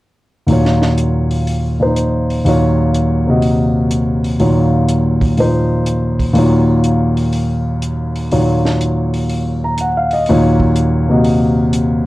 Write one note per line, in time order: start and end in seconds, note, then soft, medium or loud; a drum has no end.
0.47 2.43 D#2 soft
0.47 1.78 A#2 soft
0.47 2.45 F#3 soft
0.47 open hi-hat soft
0.51 2.46 F4 soft
0.51 2.46 C#5 medium
0.65 snare soft
0.82 snare soft
0.98 closed hi-hat soft
1.31 open hi-hat soft
1.47 open hi-hat soft
1.79 2.44 A#2 soft
1.79 2.45 F3 soft
1.79 2.45 D#4 soft
1.79 2.46 C5 soft
1.96 closed hi-hat soft
2.30 open hi-hat soft
2.44 4.38 D#2 soft
2.44 4.38 A#2 soft
2.44 4.38 F#3 soft
2.44 4.40 F4 soft
2.44 open hi-hat soft
2.49 4.40 C#5 medium
2.94 closed hi-hat soft
3.27 4.40 C3 soft
3.27 4.40 A#3 soft
3.27 4.41 F#4 soft
3.27 4.41 D#5 soft
3.42 open hi-hat soft
3.91 closed hi-hat soft
4.24 open hi-hat soft
4.40 6.31 D#2 soft
4.40 5.36 A#2 soft
4.40 6.34 F#3 soft
4.40 6.36 F4 soft
4.40 6.36 C#5 medium
4.40 open hi-hat soft
4.89 closed hi-hat soft
5.21 kick soft
5.21 open hi-hat soft
5.37 6.32 A#2 soft
5.37 6.36 F3 soft
5.37 6.36 D#4 soft
5.37 6.37 C5 soft
5.37 open hi-hat soft
5.86 closed hi-hat soft
6.19 kick soft
6.19 open hi-hat soft
6.33 8.30 D#2 medium
6.33 8.30 A#2 soft
6.33 8.31 F#3 soft
6.33 open hi-hat soft
6.37 8.32 F4 soft
6.37 8.31 C#5 soft
6.84 closed hi-hat soft
7.17 open hi-hat soft
7.33 open hi-hat soft
7.82 closed hi-hat soft
8.16 open hi-hat soft
8.32 10.27 D#2 soft
8.32 10.27 A#2 soft
8.32 10.27 F#3 soft
8.32 10.27 F4 soft
8.32 10.27 C#5 medium
8.32 open hi-hat soft
8.66 snare soft
8.81 closed hi-hat soft
9.14 open hi-hat soft
9.30 open hi-hat soft
9.64 9.88 A#5 soft
9.78 10.10 F#5 soft
9.78 closed hi-hat soft
9.97 10.21 F5 soft
10.11 10.37 D#5 medium
10.11 open hi-hat soft
10.26 12.06 D#2 medium
10.26 12.06 A#2 soft
10.26 12.06 F#3 soft
10.26 12.06 F4 soft
10.26 open hi-hat soft
10.30 12.06 C#5 medium
10.60 kick soft
10.76 closed hi-hat soft
11.09 12.06 C3 soft
11.09 12.06 A#3 soft
11.09 12.06 F#4 soft
11.09 12.06 D#5 soft
11.24 open hi-hat soft
11.73 closed hi-hat soft